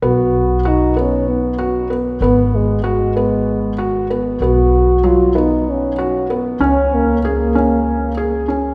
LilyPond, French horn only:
\new Staff \with { instrumentName = "French horn" } { \time 7/8 \key b \major \tempo 4 = 96 fis'4 dis'8 cis'8 b4 r8 | b8 gis8 gis2 r8 | fis'4 eis'8 dis'8 cis'4 r8 | cis'8 ais8 ais2 r8 | }